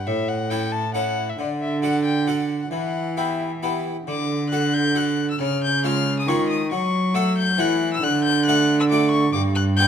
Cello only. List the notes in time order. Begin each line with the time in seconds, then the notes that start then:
0.07 A2
1.39 D3
2.71 E3
4.07 D3
5.40 C#3
6.27 D#3
6.71 F#3
7.58 E3
8.03 D3
9.34 G2